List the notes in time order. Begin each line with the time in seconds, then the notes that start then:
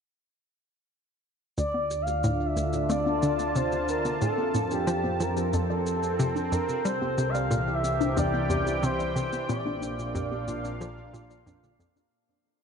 1.58 D2 D3 D4 D5, shaker
1.68 F4
1.74 high conga
1.88 D4 G4, shaker
2.02 F5
2.07 G4, shaker
2.24 A2, shaker
2.40 D5
2.46 E5
2.57 D2 A4, shaker
2.69 A5, shaker
2.89 A3 C4 D5, shaker
3.06 D4, high conga
3.23 D3 D4, shaker
3.39 shaker
3.55 C3 G4 C5, shaker
3.72 G4, shaker
3.88 A#4, shaker
4.05 D5, high conga, shaker
4.21 F2 A2 C4 A4, shaker
4.38 high conga
4.54 A2 C4, shaker
4.71 D4 G4, shaker
4.87 F3 D4, shaker
5.04 high conga
5.20 F3 G4 A#4, shaker
5.37 G4, shaker
5.53 F2 A4, shaker
5.70 D5
5.86 A4, shaker
6.03 shaker
6.19 C3 C4, shaker
6.36 D4, shaker
6.52 F2 D4 A#4, shaker
6.69 shaker
6.85 C2 C3 G3 G4 C5, shaker
6.99 G4, high conga
7.18 C3, shaker
7.30 F5
7.35 E3 D5, shaker
7.51 A#2 A4, shaker
7.74 E5 G5
7.84 C4, shaker
8.00 D4, shaker
8.17 E2 D4 D5, shaker
8.34 high conga
8.50 E2 G4, shaker
8.66 G4, shaker
8.83 C3 C5, shaker
8.99 D5, shaker
9.16 C3 A4 C5, shaker
9.33 high conga, shaker
9.49 A#1 A#2 C4 D5, shaker
9.66 D4, high conga
9.72 A#3
9.79 D4 F5, shaker
9.99 shaker
10.15 F2 G4, shaker
10.31 G4, high conga
10.40 F4
10.48 A#2, shaker
10.64 D5, shaker
10.81 F3 A4, shaker
11.14 A#2 F4, shaker
11.30 D5, shaker
11.46 F2 D4, shaker
11.63 D3, shaker
11.79 F2 A4, shaker
11.96 D4, shaker